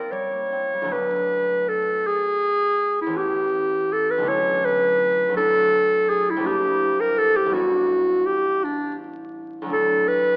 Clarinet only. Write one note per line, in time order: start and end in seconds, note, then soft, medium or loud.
0.00 0.13 A#4 medium
0.12 0.94 C#5 medium
0.93 1.70 B4 medium
1.69 2.09 A4 medium
2.07 3.00 G#4 loud
3.01 3.18 E4 medium
3.17 3.94 G4 medium
3.93 4.12 A4 medium
4.11 4.30 B4 medium
4.29 4.67 C#5 medium
4.65 5.36 B4 medium
5.37 6.11 A4 loud
6.10 6.32 G#4 medium
6.30 6.48 E4 medium
6.46 7.02 G4 loud
7.00 7.20 A#4 medium
7.18 7.38 A4 loud
7.36 7.55 G4 medium
7.54 8.28 F#4 medium
8.27 8.66 G4 loud
8.64 9.01 D4 medium
9.73 10.09 A4 medium
10.08 10.37 B4 loud